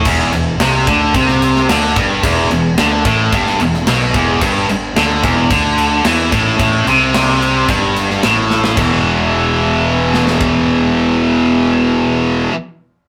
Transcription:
<<
  \new Staff \with { instrumentName = "Distorted electric guitar" } { \clef bass \time 4/4 \key e \minor \tempo 4 = 110 e,8 e,8 c8 d8 c4 d8 g,8 | e,8 e,8 d8 a,8 g,8 e,8 b,8 e,8 | g,8 g,8 d8 e,8 d4 e8 a,8 | a,8 c4. g,4 a,4 |
<e, b, e>1~ | <e, b, e>1 | }
  \new Staff \with { instrumentName = "Fingered electric bass" } { \clef bass \time 4/4 \key e \minor e,,8 e,,8 c,8 d,8 c,4 d,8 g,,8 | e,,8 e,,8 d,8 a,,8 g,,8 e,,8 b,,8 e,,8 | g,,8 g,,8 d,8 e,,8 d,4 e,8 a,,8 | a,,8 c,4. g,,4 a,,4 |
e,,1~ | e,,1 | }
  \new DrumStaff \with { instrumentName = "Drums" } \drummode { \time 4/4 <cymc bd>8 cymc8 <cymc sn>8 <cymc bd>8 <cymc bd>16 sn16 cymc16 sn16 <cymc sn>8 <cymc bd>8 | <cymc bd>8 cymc8 <cymc sn>8 <cymc bd>8 <cymc bd>16 sn16 cymc16 sn16 <cymc sn>8 <cymc bd>8 | <cymc bd>8 cymc8 <cymc sn>8 <cymc bd>8 <cymc bd>8 cymc8 <cymc sn>8 <cymc bd>8 | <cymc bd>8 cymc8 <cymc sn>8 cymc8 <cymc bd>8 cymc16 sn16 <cymc sn>8 sn16 sn16 |
<cymc bd>4 r4 r8 sn16 sn16 bd4 | r4 r4 r4 r4 | }
>>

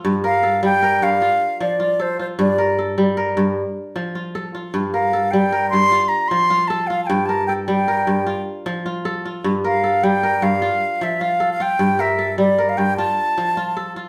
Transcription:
<<
  \new Staff \with { instrumentName = "Flute" } { \time 12/8 \key g \minor \tempo 4. = 102 r8 f''4 g''4 f''4. d''4 c''8 c''8 | d''4. r1 r8 | r8 f''4 g''4 c'''4 bes''8 c'''4 a''8 f''16. a''32 | g''8 a''8 g''8 g''2 r2 r8 |
r8 f''4 g''4 f''4. e''8 f''8. f''16 g''8~ | g''8 e''4 d''8. f''16 g''8 a''2~ a''8 r8 | }
  \new Staff \with { instrumentName = "Kora" } { \time 12/8 \key g \minor f'8 bes'8 a'4 bes'4 f'4. f'4 f'8~ | f'8 bes'8 a'4 bes'4. r4 f'4 f'8~ | f'8 bes'8 a'4 bes'4 f'4. f'4 f'8~ | f'8 bes'8 a'4 bes'4 f'4. f'4 f'8~ |
f'8 bes'8 a'4 bes'4 f'4. f'4 f'8~ | f'8 bes'8 a'4 bes'4 f'4. f'4 f'8 | }
  \new Staff \with { instrumentName = "Kora" } { \clef bass \time 12/8 \key g \minor g,4 r8 g4 g,8 r4 f4 a'4 | g,4 r8 g4 g,8 r4 f4 a'4 | g,4 r8 g4 g,8 r4 f4 a'4 | g,4 r8 g4 g,8 r4 f4 a'4 |
g,4 r8 g4 g,8 r4 f4 a'4 | g,4 r8 g4 g,8 r4 f4 a'4 | }
>>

